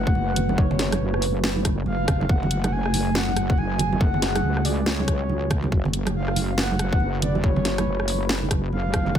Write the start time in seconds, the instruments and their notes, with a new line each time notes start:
Already playing: wobble bass F#1, ambient pad A3 F#4 B4, soft synth lead F#5
0.07 kick
0.15 wobble bass F#1, high conga
0.36 closed hi-hat, low conga
0.49 high conga, low conga
0.58 soft synth lead C#5, kick
0.71 low conga
0.79 snare, closed hi-hat
0.92 cross-stick, closed hi-hat, high conga
1.01 wobble bass F#1
1.14 cross-stick
1.22 open hi-hat
1.44 snare
1.56 high conga
1.65 kick, cross-stick, closed hi-hat
1.86 wobble bass F#1, soft synth lead F5, high conga
2.08 kick, cross-stick, closed hi-hat, low conga
2.21 high conga, low conga
2.29 wobble bass F#1, ambient pad G#4, soft synth lead F#5, kick
2.43 low conga
2.51 closed hi-hat
2.64 cross-stick, closed hi-hat, high conga
2.72 soft synth lead G#5
2.86 cross-stick
2.94 open hi-hat, high conga
3.15 soft synth lead F#5, snare
3.28 high conga
3.37 cross-stick, closed hi-hat
3.50 kick
3.58 wobble bass F#1, soft synth lead G#5, high conga
3.79 closed hi-hat, low conga
3.93 high conga, low conga
4.01 soft synth lead F#5, kick
4.14 low conga
4.22 snare, closed hi-hat
4.35 cross-stick, closed hi-hat, high conga
4.44 wobble bass C#2
4.57 cross-stick
4.65 soft synth lead D5, open hi-hat
4.86 soft synth lead C#5, snare
4.99 high conga
5.08 kick, cross-stick, closed hi-hat
5.29 high conga
5.50 kick, cross-stick, closed hi-hat, low conga
5.63 high conga, low conga
5.72 wobble bass F#1, ambient pad B4, kick
5.85 low conga
5.93 closed hi-hat
6.06 cross-stick, closed hi-hat, high conga
6.16 soft synth lead F5
6.28 cross-stick
6.36 open hi-hat, high conga
6.58 soft synth lead F#5, snare
6.71 high conga
6.79 cross-stick, closed hi-hat
6.93 kick
7.00 wobble bass F#1, high conga
7.22 soft synth lead D5, closed hi-hat, low conga
7.35 high conga, low conga
7.44 soft synth lead C#5, kick
7.56 low conga
7.65 snare, closed hi-hat
7.78 cross-stick, closed hi-hat, high conga
7.86 wobble bass F#1
8.00 cross-stick
8.08 open hi-hat
8.29 snare
8.43 high conga
8.51 kick, cross-stick, closed hi-hat
8.72 wobble bass F#1, soft synth lead F5, high conga
8.93 kick, cross-stick, closed hi-hat, low conga
9.06 high conga, low conga
9.15 wobble bass F#1, soft synth lead F#5, kick